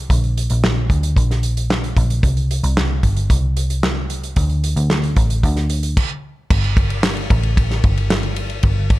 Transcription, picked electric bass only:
0.10 A#1
0.51 A#1
0.90 D2
1.17 A#1
1.97 A#1
2.23 C2
2.63 C2
3.03 G1
3.30 C2
4.37 D2
4.76 D2
5.17 A1
5.44 D2
6.51 G1
7.31 A1
7.84 G1
8.64 G1

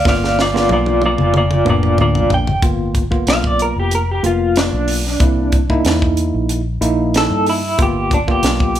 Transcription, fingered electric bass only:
0.06 G1
0.69 B1
1.19 F1
1.67 F1
1.99 D2
2.15 B1
2.30 A#1
2.47 G1
2.63 G1
3.27 B1
3.76 F1
4.24 F1
4.73 B1
5.20 C2
5.85 E2
6.34 A#1
6.81 A#1
7.31 G2
7.79 G1
8.43 B1

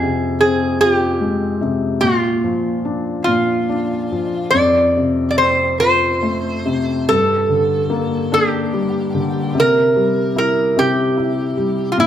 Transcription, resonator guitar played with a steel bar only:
Already playing: G#4
0.41 G#4
0.81 G4
2.01 F4
3.24 F4
4.51 D5
5.31 D5
5.38 C5
5.80 C5
7.09 A4
8.34 G4
9.60 A#4
10.38 A#4
10.79 G4
11.92 F4
12.00 E4

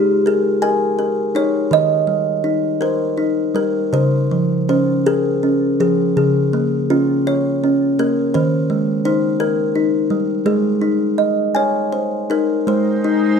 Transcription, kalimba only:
Already playing: G#3 D#4 G4
0.26 G#4 A#4
0.62 A#4 G#5
0.99 A#4
1.35 D#4 C#5
1.71 D#3 D#5
2.07 G3
2.44 D#4
2.81 A#4 C5
3.17 D#4
3.55 G3 A#4
3.93 C#3 C5
4.31 F3
4.69 C#4 C5
5.06 G#4 A#4
5.43 C#4
5.80 F3 G#4
6.17 C#3 G#4
6.53 A#3
6.90 C#4 F4
7.27 C#5
7.64 C#4
7.99 A#3 A#4
8.34 D#3 C5
8.70 G#3
9.05 D#4 C5
9.40 A#4
9.75 D#4
10.10 G3
10.46 G#3 G#4
10.82 D#4
11.18 D#5
11.55 C#5 G#5
11.92 C5
12.30 D#4 A#4
12.67 G#3 C5
13.04 D#4

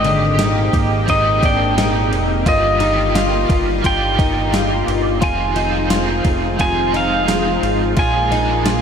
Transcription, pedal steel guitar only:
Already playing: D#5
1.10 D#5
1.45 G5
2.48 D#5
3.86 G5
5.24 G#5
6.61 G#5
6.97 F5
7.99 G#5

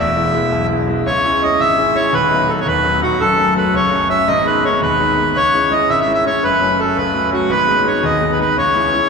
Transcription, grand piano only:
0.00 E1 E2
0.16 G#3 B3 E4
0.34 G#3 B3 E4
0.52 B1
0.70 G#3 B3 E4
0.88 G#3 B3 E4
1.06 C#2
1.24 G#3 C#4 E4
1.42 G#3 C#4 E4
1.60 G#1
1.78 G#3 C#4 E4
1.95 G#3 C#4 E4
2.13 D#1 D#2
2.31 F#3 B3 D#4
2.48 F#3 B3 D#4
2.66 D#2
2.84 F#3 B3 D#4
3.01 F#3 B3 D#4
3.20 F#1 F#2
3.38 F#3 A3 C#4
3.55 F#3 A3 C#4
3.73 C#2
3.91 F#3 A3 C#4
4.09 F#3 A3 C#4
4.28 G#1 G#2
4.45 G#3 B3 D#4
4.64 G#3 B3 D#4
4.82 D#2
5.00 G#3 B3 D#4
5.18 G#3 B3 D#4
5.35 C#2
5.53 G#3 C#4 E4
5.71 G#3 C#4 E4
5.90 G#1
6.07 G#3 C#4 E4
6.25 G#3 C#4 E4
6.43 F#1 F#2
6.60 F#3 A3 C#4
6.78 F#3 A3 C#4
6.96 C#2
7.14 F#3 A3 C#4
7.32 F#3 A3 C#4
7.49 G#1 G#2
7.67 G#3 B3 D#4
7.85 G#3 B3 D#4
8.03 D#2
8.21 G#3 B3 D#4
8.39 G#3 B3 D#4
8.57 C#2
8.75 G#3 C#4 E4
8.93 G#3 C#4 E4

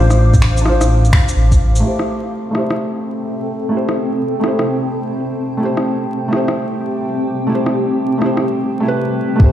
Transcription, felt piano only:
Already playing: D4 F4
0.00 C5
0.61 D4 F4
0.69 C5
1.80 A3 E4
1.85 G4 C5
2.51 A3 E4
2.56 G4 C5
3.69 A3 E4
3.74 G4 C5
4.40 A3 E4
4.45 G4 C5
5.57 A3 E4
5.63 G4 C5
6.28 A3 E4
6.34 G4 C5
7.47 A3 E4
7.52 G4 C5
8.18 A3 E4
8.23 G4 C5
8.80 A3 E4
8.86 G4 B4
9.36 A3 E4
9.41 G4 C5

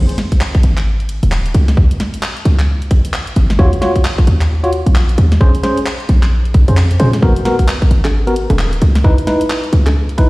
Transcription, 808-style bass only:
0.64 G#1
1.23 D#1
1.55 C#2
1.77 C#2
2.45 C#2
3.36 G#1
3.59 D#2
4.27 D#2
4.86 A#1
5.18 D#2
5.41 A#1
6.09 A#1
6.54 A#1
6.68 F2
7.00 A#2
7.23 G#1
7.91 G#1
8.50 D#1
8.82 C#2
9.05 C#2
9.73 C#2

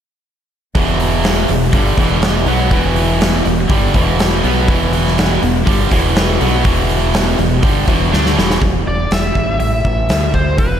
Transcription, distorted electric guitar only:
0.75 E2 B2 E3
1.49 E2 B2
1.74 G2 D3 G3
1.98 E2 B2 E3
2.47 B2 F#3 B3
2.72 E2 B2 E3
3.45 E2 B2
3.69 G2 D3 G3
3.94 E2 B2 E3
4.43 B2 F#3 B3
4.69 E2 B2 E3
5.43 E2 B2
5.66 G2 D3 G3
5.91 E2 B2 E3
6.39 B2 F#3 B3
6.64 E2 B2 E3
7.38 E2 B2
7.62 G2 D3 G3
7.87 E2 B2 E3
8.12 D3 A3 D4
8.36 E2 B2 E3

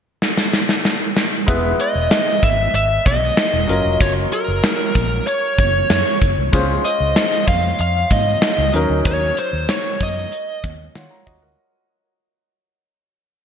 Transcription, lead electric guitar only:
1.81 D#5
2.44 E5
2.75 E5
3.07 D#5
4.01 C#5
4.33 A#4
4.95 A#4
5.27 C#5
6.85 D#5
7.48 F5
7.81 F5
8.12 D#5
9.07 C#5
9.39 C5
9.70 C#5
10.03 D#5

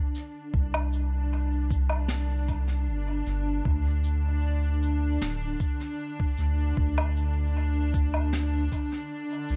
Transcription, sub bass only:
0.54 C2
2.87 G1
3.26 G1
3.66 D2
5.21 D1
6.38 D2
6.77 D2
9.50 C2

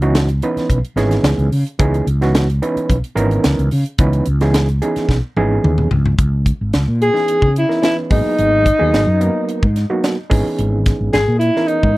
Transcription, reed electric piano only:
0.02 E3 B3 C#4 D#4 F#4
0.43 E3 B3 C#4 D#4 B4
0.97 E3 B3 C#4 D#4 G#4
1.79 E3 B3 C#4 D#4 G#4
2.21 E3 B3 C#4 D#4 F#4
2.62 E3 B3 C#4 D#4 B4
3.16 E3 B3 C#4 D#4 A#4
3.99 E3 B3 C#4 D#4 B4
4.41 E3 B3 C#4 D#4 G#4
4.82 E3 B3 C#4 D#4 G#4
5.37 E3 B3 C#4 D#4 G#4
7.13 E3 B3 C#4 D#4 G#4
7.69 E3 B3 C#4 D#4 A#4
7.82 E3 B3 C#4 D#4 B4
8.10 F#3 A#3 B3 D#4 G#4
8.79 F#3 A#3 B3 D#4 G#4
9.21 F#3 A#3 B3 D#4 A#4
9.90 F#3 A#3 B3 D#4 F#4
10.30 E3 B3 C#4 D#4 G#4
11.56 E3 B3 C#4 D#4 A#4

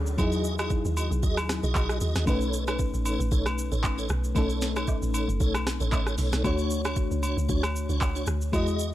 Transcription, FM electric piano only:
Already playing: F#3 C#4 D4 G#4 A4 C#5
0.17 F#3 D#4 E4 G#4
2.26 A3 C#4 D#4 B4
4.35 A3 C#4 D#4 A4
6.44 A3 D4 F#4 C#5
8.52 G#3 E4 F#4 D#5

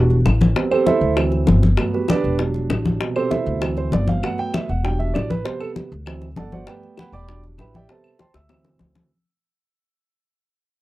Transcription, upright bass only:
Already playing: E1
0.26 A1
1.01 D2
1.48 G1
2.24 E1
2.70 A1
3.46 D2
3.93 G1
4.69 E1
5.16 A1
5.92 D2
6.36 G1
7.12 E1
7.58 A1
8.34 D2
8.80 D2

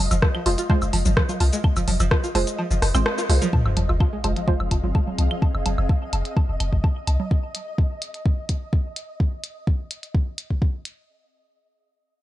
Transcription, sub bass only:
0.11 F1
0.46 F1
0.82 F1
0.93 F1
1.06 G1
1.40 C2
1.76 F1
1.88 F1
2.00 F1
2.35 F1
2.71 F1
2.82 F1
2.94 G#1
3.29 C2
3.65 F1
3.77 F1
3.89 F1
4.24 F1
4.60 F1
4.71 F1
4.83 G1
5.18 C2
5.54 F1
5.66 F1
5.78 F1
6.13 F1
6.49 F1
6.60 F1
6.73 G1
7.07 C2

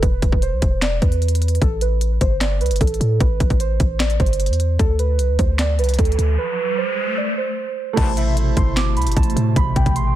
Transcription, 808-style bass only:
0.03 E1
0.22 E1
0.32 E1
0.52 B1
0.62 E1
1.02 E2
1.62 A1
2.21 G1
2.61 C2
2.71 G1
2.81 A1
3.01 A2
3.20 A1
3.40 A1
3.50 A1
3.80 A1
4.20 G1
4.50 E2
4.79 D2
5.19 C2
5.29 D2
5.39 D2
5.79 C2
5.99 D2
6.19 D2
7.97 A1
8.57 G1
8.97 C2
9.07 G1
9.17 A1
9.36 A2
9.56 A1
9.76 A1
9.86 A1

